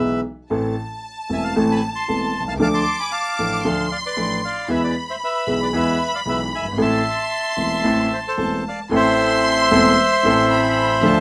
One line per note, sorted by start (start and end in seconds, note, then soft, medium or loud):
0.00 0.19 B1 soft
0.00 0.19 B2 soft
0.00 0.19 E3 soft
0.00 0.19 G#3 soft
0.00 0.19 B3 soft
0.00 0.19 G#4 soft
0.00 0.21 B4 medium
0.00 0.20 E5 medium
0.50 0.73 A1 medium
0.50 0.73 A2 medium
0.50 0.72 E3 medium
0.50 0.73 A3 medium
0.50 0.73 C4 medium
0.50 0.73 A4 medium
0.50 2.56 A5 medium
1.29 1.51 E1 soft
1.29 1.52 E2 soft
1.29 1.51 E3 soft
1.29 1.51 A3 soft
1.29 1.52 C4 soft
1.29 1.52 A4 soft
1.29 1.43 E5 medium
1.29 1.44 G#5 medium
1.44 1.55 F5 medium
1.44 1.57 A5 medium
1.55 1.78 A1 medium
1.55 1.78 A2 medium
1.55 1.77 E3 medium
1.55 1.78 A3 medium
1.55 1.78 C4 medium
1.55 1.78 A4 medium
1.71 1.82 G#5 medium
1.71 1.83 B5 medium
1.95 2.43 A5 medium
1.95 2.43 C6 medium
2.08 2.30 E1 soft
2.08 2.30 E2 soft
2.08 2.30 E3 soft
2.08 2.30 A3 soft
2.08 2.30 C4 soft
2.08 2.30 A4 soft
2.41 2.47 B1 soft
2.47 2.54 C2 soft
2.47 2.54 F5 medium
2.47 2.54 A5 medium
2.54 2.60 C#2 medium
2.59 2.82 D2 medium
2.59 2.82 D3 medium
2.59 2.82 F3 medium
2.59 2.82 A3 medium
2.59 2.82 D4 medium
2.59 2.82 A4 medium
2.59 2.68 F5 medium
2.59 2.68 A5 medium
2.59 3.60 D6 medium
2.74 2.98 A5 medium
2.74 3.01 C6 medium
3.00 3.12 G#5 medium
3.00 3.12 B5 medium
3.12 3.86 F5 medium
3.12 3.87 A5 medium
3.39 3.61 A1 soft
3.39 3.61 A2 medium
3.39 3.60 F3 soft
3.39 3.60 A3 soft
3.39 3.61 D4 soft
3.39 3.61 A4 soft
3.63 3.87 D2 medium
3.63 3.87 D3 medium
3.63 3.87 F3 medium
3.63 3.87 A3 medium
3.63 3.87 D4 medium
3.63 3.87 A4 medium
3.63 4.68 C6 medium
3.91 3.97 D5 medium
3.91 3.97 F5 medium
4.06 4.41 B4 medium
4.06 4.41 D5 medium
4.17 4.39 A1 medium
4.17 4.39 A2 soft
4.17 4.38 F3 soft
4.17 4.39 A3 soft
4.17 4.39 D4 soft
4.17 4.39 A4 soft
4.45 4.68 D5 medium
4.45 4.71 F5 medium
4.68 4.91 E2 medium
4.68 4.91 E3 medium
4.68 4.91 G#3 medium
4.68 4.91 B3 medium
4.68 4.91 G#4 medium
4.68 4.82 B4 medium
4.68 4.82 E5 medium
4.68 6.78 B5 medium
4.84 4.96 B4 medium
4.84 4.95 D5 medium
5.10 5.16 C5 medium
5.10 5.16 E5 medium
5.24 5.59 B4 medium
5.24 5.59 E5 medium
5.47 5.69 B1 soft
5.47 5.69 B2 medium
5.47 5.69 E3 soft
5.47 5.69 G#3 soft
5.47 5.69 B3 soft
5.47 5.69 G#4 soft
5.63 5.69 B4 medium
5.63 5.68 D5 medium
5.73 5.95 E2 medium
5.73 5.95 E3 medium
5.73 5.95 G#3 medium
5.73 5.95 B3 medium
5.73 5.95 G#4 medium
5.73 6.11 B4 medium
5.73 6.15 E5 medium
6.14 6.21 D5 soft
6.14 6.20 F5 medium
6.26 6.48 B1 medium
6.26 6.48 B2 soft
6.26 6.48 E3 soft
6.26 6.48 G#3 soft
6.26 6.48 B3 soft
6.26 6.48 G#4 soft
6.26 6.41 B4 medium
6.26 6.40 E5 medium
6.55 6.65 F#1 soft
6.55 6.67 E5 medium
6.55 6.66 G#5 medium
6.64 6.71 G1 medium
6.72 6.78 G#1 medium
6.78 7.00 A1 medium
6.78 7.00 A2 medium
6.78 7.00 E3 medium
6.78 7.00 A3 medium
6.78 7.00 C4 medium
6.78 7.00 A4 medium
6.78 8.37 C6 medium
6.82 8.13 E5 medium
6.82 8.35 A5 medium
7.57 7.80 E1 soft
7.57 7.80 E2 soft
7.57 7.79 E3 soft
7.57 7.79 A3 soft
7.57 7.80 C4 soft
7.57 7.80 A4 soft
7.84 8.06 A1 medium
7.84 8.06 A2 medium
7.84 8.06 E3 medium
7.84 8.06 A3 medium
7.84 8.06 C4 medium
7.84 8.07 A4 medium
8.13 8.19 C5 medium
8.13 8.19 E5 medium
8.27 8.63 A4 soft
8.27 8.64 C5 medium
8.37 8.60 E1 soft
8.37 8.60 E2 soft
8.37 8.60 E3 soft
8.37 8.60 A3 soft
8.37 8.60 C4 soft
8.37 8.60 A4 soft
8.37 8.88 A5 medium
8.68 8.80 D5 medium
8.68 8.79 F5 medium
8.89 9.67 A1 medium
8.89 9.67 A2 medium
8.89 9.66 E3 medium
8.89 9.67 A3 medium
8.89 9.68 C4 medium
8.89 9.68 E4 medium
8.89 9.68 A4 medium
8.89 10.47 C6 loud
8.96 11.20 C5 medium
8.96 11.20 E5 loud
9.71 9.94 E1 medium
9.71 9.94 E2 medium
9.71 9.94 E3 medium
9.71 9.94 A3 medium
9.71 9.94 C4 medium
9.71 9.94 E4 medium
9.71 9.94 A4 medium
10.23 10.99 A1 medium
10.23 10.99 A2 medium
10.23 10.98 E3 medium
10.23 10.99 A3 medium
10.23 10.99 C4 medium
10.23 11.00 C4 medium
10.23 10.99 E4 medium
10.23 10.99 A4 medium
10.23 11.00 A4 medium
10.51 11.03 B5 medium
11.01 11.20 D2 medium
11.01 11.20 D3 medium
11.01 11.20 F3 medium
11.01 11.20 A3 medium
11.01 11.20 D4 medium
11.01 11.20 F4 medium
11.01 11.20 A4 medium
11.01 11.20 A5 loud